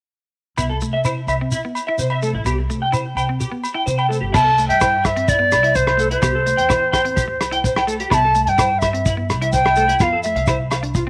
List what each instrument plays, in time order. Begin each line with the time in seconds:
0.57 upright bass C2, clean electric guitar B3 E4, low agogo, shekere
0.69 clean electric guitar A4
0.81 upright bass C3, clean electric guitar A3, shekere
0.93 clean electric guitar E5
1.05 clean electric guitar E4 C5, low agogo, shekere
1.27 upright bass C2, clean electric guitar E5, low agogo, shekere
1.41 clean electric guitar C4
1.52 clean electric guitar E4, shekere
1.65 clean electric guitar B3
1.75 low agogo, shekere
1.87 clean electric guitar E4 E5
1.98 upright bass C3, clean electric guitar C5, shekere
2.10 clean electric guitar E5, low agogo
2.22 clean electric guitar A3 A4, shekere
2.33 upright bass A1, clean electric guitar E4
2.45 upright bass C2, clean electric guitar B3 G4, low agogo, shekere
2.58 muted clean electric guitar stroke
2.68 upright bass C3, clean electric guitar A3, shekere
2.82 clean electric guitar G5
2.92 clean electric guitar E4 C5, low agogo, shekere
3.15 upright bass C2, clean electric guitar G5, low agogo, shekere
3.29 clean electric guitar C4
3.40 clean electric guitar G4, shekere
3.52 clean electric guitar B3
3.64 low agogo, shekere
3.74 clean electric guitar E4 G5
3.86 upright bass C3, clean electric guitar C5, shekere
3.98 clean electric guitar G5, low agogo
4.09 clean electric guitar A3 A4, shekere
4.21 upright bass G1, clean electric guitar G4
4.32 upright bass C2, clean electric guitar B3 E4, flute A5, kick, cross-stick, crash, low agogo, shekere
4.44 clean electric guitar A4
4.58 clean electric guitar A3, closed hi-hat, shekere
4.69 upright bass G2, clean electric guitar E5, flute G5, closed hi-hat
4.80 clean electric guitar E4 C5, kick, cross-stick, closed hi-hat, low agogo, shekere
5.04 flute E5, muted clean electric guitar stroke, kick, cross-stick, closed hi-hat, low agogo, shekere
5.16 clean electric guitar C4, closed hi-hat
5.28 clean electric guitar E4, flute D5, kick, closed hi-hat, shekere
5.39 clean electric guitar B3
5.52 upright bass C2, cross-stick, closed hi-hat, low agogo, shekere
5.63 clean electric guitar E4 E5, closed hi-hat
5.75 clean electric guitar C5, flute C5, kick, closed hi-hat, shekere
5.87 cross-stick, low agogo
5.97 clean electric guitar A3 A4, closed hi-hat, shekere
6.11 clean electric guitar E4, flute C5, closed hi-hat
6.22 upright bass C2, clean electric guitar B3 G4, kick, cross-stick, closed hi-hat, low agogo, shekere
6.35 clean electric guitar A4
6.46 clean electric guitar A3, closed hi-hat, shekere
6.57 upright bass E2, clean electric guitar G5, closed hi-hat
6.69 clean electric guitar E4 C5, kick, cross-stick, closed hi-hat, low agogo, shekere
6.92 clean electric guitar G5, kick, cross-stick, closed hi-hat, low agogo, shekere
7.05 clean electric guitar C4, closed hi-hat
7.16 clean electric guitar G4, kick, closed hi-hat, shekere
7.28 muted clean electric guitar stroke
7.40 upright bass C2, cross-stick, closed hi-hat, low agogo, shekere
7.51 clean electric guitar E4 G5, closed hi-hat
7.64 clean electric guitar C5, kick, closed hi-hat, shekere
7.76 clean electric guitar G5, cross-stick, low agogo
7.87 clean electric guitar A3 A4, closed hi-hat, shekere
8.00 clean electric guitar G4, closed hi-hat
8.10 upright bass C2, clean electric guitar B3 E4, flute A5 B5, kick, cross-stick, closed hi-hat, low agogo, shekere
8.24 clean electric guitar A4
8.35 clean electric guitar A3, closed hi-hat, shekere
8.45 upright bass G2, flute G5 A5, muted clean electric guitar stroke, closed hi-hat
8.58 clean electric guitar E4 C5, kick, cross-stick, closed hi-hat, low agogo, shekere
8.79 flute E5, kick, cross-stick, closed hi-hat, low agogo, shekere
8.83 clean electric guitar E5
8.93 clean electric guitar C4, closed hi-hat
9.06 clean electric guitar E4, kick, closed hi-hat, shekere
9.17 clean electric guitar B3
9.29 upright bass C2, cross-stick, closed hi-hat, low agogo, shekere
9.42 clean electric guitar E4 E5, closed hi-hat
9.52 clean electric guitar C5, flute G5, kick, closed hi-hat, shekere
9.65 clean electric guitar E5, cross-stick, low agogo
9.76 clean electric guitar A3 A4, closed hi-hat, shekere
9.88 clean electric guitar E4, closed hi-hat
9.99 upright bass F2, clean electric guitar B3 F4, flute F5 G5, kick, cross-stick, closed hi-hat, low agogo, shekere
10.12 clean electric guitar A4
10.23 clean electric guitar A3, flute E5, closed hi-hat, shekere
10.35 upright bass C2, clean electric guitar F5, closed hi-hat
10.47 clean electric guitar E4 C5, kick, cross-stick, closed hi-hat, low agogo, shekere
10.71 clean electric guitar F5, cross-stick, closed hi-hat, low agogo, shekere
10.83 clean electric guitar D4, closed hi-hat
10.95 clean electric guitar F4, kick, closed hi-hat, shekere